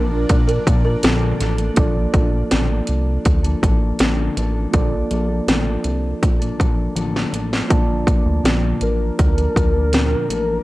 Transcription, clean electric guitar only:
0.00 0.10 F3 medium
0.00 0.11 A#3 medium
0.00 0.10 D4 medium
0.00 0.12 A4 medium
0.11 0.64 F3 medium
0.11 0.65 A#3 medium
0.11 0.66 D4 medium
0.65 0.84 F3 medium
0.65 0.85 A#3 medium
0.65 0.84 D4 medium
0.65 0.82 A4 medium
0.84 1.02 F3 medium
0.84 1.03 A#3 medium
0.84 1.03 D4 medium
0.84 1.03 A4 medium
1.02 1.40 A#2 medium
1.02 1.40 D3 loud
1.02 1.38 F3 loud
1.02 1.39 A#3 loud
1.02 1.41 D4 loud
1.02 1.41 A4 loud
1.39 1.58 F3 medium
1.39 1.59 A#3 medium
1.39 1.58 D4 medium
1.39 1.57 A4 medium
1.58 1.77 F3 soft
1.58 1.78 A#3 medium
1.58 1.78 D4 medium
1.58 1.77 A4 medium
1.77 1.96 A#2 medium
1.77 1.96 D3 medium
1.77 1.96 F3 medium
1.77 1.97 A#3 loud
1.77 1.95 D4 loud
1.77 1.94 A4 medium
1.95 2.14 A#3 soft
1.95 2.15 D4 soft
1.95 2.14 A4 soft
1.99 2.12 F3 soft
2.13 2.33 F3 medium
2.13 2.33 A#3 medium
2.13 2.32 D4 medium
2.13 2.30 A4 medium
2.32 2.50 F3 soft
2.32 2.51 A#3 soft
2.32 2.51 D4 medium
2.32 2.51 A4 medium
2.50 2.69 A#2 medium
2.50 2.70 D3 medium
2.50 2.70 F3 medium
2.50 2.70 A#3 medium
2.50 2.69 D4 medium
2.50 2.67 A4 medium
2.69 3.47 F3 soft
2.69 3.45 A#3 soft
2.69 3.44 D4 soft
2.69 3.43 A4 medium
3.43 3.60 F3 medium
3.43 3.62 A#3 medium
3.43 3.63 D4 medium
3.43 3.62 A4 medium
3.61 3.99 F3 medium
3.61 3.99 A#3 medium
3.61 4.00 D4 medium
3.61 4.00 A4 medium
3.99 4.37 D3 loud
3.99 4.35 F3 medium
3.99 4.36 A#3 medium
3.99 4.37 D4 loud
3.99 4.37 A4 loud
4.36 4.55 F3 medium
4.36 4.55 A#3 medium
4.36 4.55 D4 medium
4.36 4.53 A4 medium
4.54 4.73 F3 soft
4.54 4.74 A#3 soft
4.54 4.74 D4 medium
4.54 4.73 A4 medium
4.73 4.92 A#2 medium
4.73 4.92 D3 medium
4.73 4.93 F3 loud
4.73 4.93 A#3 medium
4.73 4.92 D4 loud
4.73 4.91 A4 medium
4.92 5.09 F3 soft
4.92 5.10 A#3 soft
4.92 5.11 D4 soft
4.92 5.11 A4 medium
5.10 5.29 F3 medium
5.10 5.29 A#3 medium
5.10 5.29 D4 medium
5.10 5.27 A4 medium
5.28 5.47 F3 soft
5.28 5.48 A#3 soft
5.28 5.48 D4 soft
5.28 5.47 A4 medium
5.47 5.66 A#2 medium
5.47 5.66 D3 medium
5.47 5.67 F3 medium
5.47 5.67 A#3 medium
5.47 5.65 D4 medium
5.47 5.64 A4 medium
5.65 6.43 F3 soft
5.65 6.42 A#3 soft
5.65 6.41 D4 soft
5.65 6.39 A4 medium
6.39 6.56 F3 soft
6.39 6.58 A#3 medium
6.39 6.59 D4 medium
6.39 6.58 A4 medium
6.57 6.94 F3 medium
6.57 6.95 A#3 medium
6.57 6.95 D4 medium
6.57 6.95 A4 medium
6.95 7.33 D3 medium
6.95 7.31 F3 medium
6.95 7.32 A#3 loud
6.95 7.33 D4 medium
6.95 7.33 A4 loud
7.32 7.51 F3 medium
7.32 7.52 A#3 medium
7.32 7.51 D4 medium
7.32 7.49 A4 medium
7.50 7.69 F3 soft
7.50 7.69 A#3 soft
7.50 7.70 D4 soft
7.50 7.69 A4 medium
7.69 8.06 A#2 medium
7.69 8.07 D3 medium
7.69 8.05 F3 medium
7.69 8.07 A#3 loud
7.69 8.08 D4 medium
7.69 8.08 A4 medium
8.06 8.43 F3 medium
8.06 8.44 A#3 medium
8.06 8.44 D4 medium
8.06 8.45 A4 medium
8.43 8.81 A#2 medium
8.43 8.81 D3 medium
8.43 8.79 F3 medium
8.43 8.80 A#3 medium
8.43 8.82 D4 medium
8.43 8.82 A4 medium
8.80 9.36 F3 medium
8.80 9.37 A#3 medium
8.80 9.36 D4 medium
9.36 9.53 F3 soft
9.36 9.54 A#3 soft
9.36 9.55 D4 soft
9.36 9.55 A4 medium
9.54 9.73 F3 soft
9.54 9.74 A#3 medium
9.54 9.73 D4 medium
9.54 9.72 A4 medium
9.73 9.92 F3 soft
9.73 9.92 A#3 medium
9.73 9.93 D4 soft
9.73 9.92 A4 medium
9.92 10.29 A#2 medium
9.92 10.29 D3 medium
9.92 10.27 F3 medium
9.92 10.28 A#3 medium
9.92 10.30 D4 loud
10.28 10.47 F3 medium
10.28 10.48 A#3 medium
10.28 10.47 D4 medium
10.28 10.45 A4 medium
10.46 10.63 F3 soft
10.46 10.63 A#3 soft
10.46 10.63 D4 soft
10.46 10.63 A4 medium

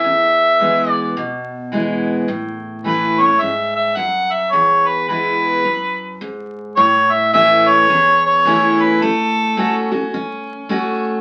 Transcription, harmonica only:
0.00 0.91 E5 loud
0.91 1.46 D5 loud
2.85 3.21 B4 medium
3.20 3.42 C#5 medium
3.40 3.75 E5 medium
3.75 3.97 E5 medium
3.96 4.32 F#5 loud
4.31 4.53 E5 medium
4.52 4.88 C#5 medium
4.87 5.08 B4 medium
5.09 6.17 B4 medium
6.76 7.13 C#5 loud
7.12 7.33 E5 loud
7.33 7.70 E5 loud
7.68 8.24 C#5 loud
8.25 8.83 C#5 loud
8.82 9.03 B4 medium
9.02 9.92 A4 medium

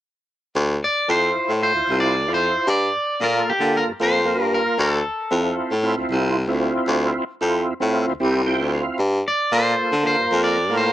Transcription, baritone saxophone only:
0.56 0.78 D2 loud
1.09 1.31 F2 medium
1.49 1.71 A2 medium
1.74 1.81 D2 soft
1.89 2.30 C2 medium
2.29 2.50 F2 medium
2.67 2.89 G2 loud
3.20 3.42 A#2 medium
3.60 3.81 D3 medium
3.87 3.93 G2 soft
4.00 4.40 F2 medium
4.38 4.60 G2 medium
4.79 5.00 D2 loud
5.31 5.53 F2 medium
5.71 5.92 A2 medium
5.97 6.03 D2 soft
6.10 6.51 C2 medium
6.49 6.71 D2 medium
6.87 7.10 D2 loud
7.41 7.63 F2 medium
7.81 8.03 A2 medium
8.08 8.14 D2 soft
8.21 8.61 C2 medium
8.60 8.82 D2 medium
8.99 9.21 G2 loud
9.52 9.74 A#2 medium
9.92 10.14 D3 medium
10.19 10.25 G2 soft
10.31 10.72 F2 medium
10.71 10.93 A2 medium

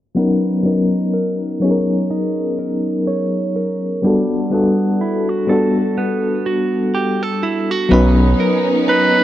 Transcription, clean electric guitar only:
0.17 4.04 B3 medium
0.65 2.09 D#4 medium
1.14 2.58 A#4 medium
1.62 3.06 C#5 medium
2.10 4.15 D#4 medium
2.59 3.55 A#4 medium
3.07 4.15 C#5 medium
3.56 4.15 A#4 medium
4.04 7.91 G3 medium
4.53 5.97 B3 medium
5.01 5.29 E4 medium
5.29 6.45 F#4 soft
5.49 6.94 A4 medium
5.98 7.91 B3 medium
6.46 7.43 F#4 medium
6.95 7.23 G4 medium
7.23 8.03 A4 medium
7.43 7.71 E4 medium
7.71 8.03 F#4 soft
7.91 9.24 B3 medium
8.40 9.24 A#4 medium
8.88 9.24 D#4 medium

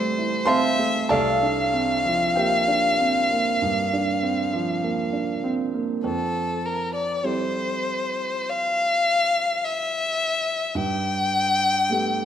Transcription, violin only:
0.00 0.49 C5 medium
0.48 1.12 E5 medium
1.10 5.44 F5 medium
6.05 6.67 A4 medium
6.65 6.94 A#4 medium
6.94 7.27 D5 medium
7.25 8.51 C5 medium
8.50 9.65 F5 medium
9.64 10.78 E5 medium
10.76 12.25 G5 medium

